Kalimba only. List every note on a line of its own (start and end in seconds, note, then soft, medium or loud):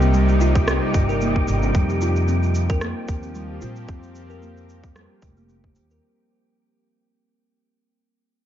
0.02 0.09 C4 medium
0.14 0.27 G3 medium
0.29 0.40 G4 medium
0.41 0.55 F4 loud
0.68 0.81 C4 medium
1.09 1.20 A#4 medium
1.21 1.35 A#3 medium
1.63 1.69 C4 medium
1.75 1.88 G3 medium
1.90 2.00 G4 medium
2.01 2.15 F4 loud
2.28 2.42 C4 medium
2.70 2.81 A#4 medium
2.81 2.95 A#3 medium
3.23 3.30 C4 medium
3.35 3.48 G3 medium
3.50 3.61 G4 medium
3.61 3.76 F4 medium
3.89 4.03 C4 medium
4.30 4.42 A#4 medium
4.42 4.56 A#3 medium
4.84 4.91 C4 medium
4.95 5.09 G3 medium
5.10 5.21 G4 medium
5.22 5.36 G4 medium
5.37 5.48 A#3 medium
5.49 5.63 C4 medium
5.91 6.02 A#4 medium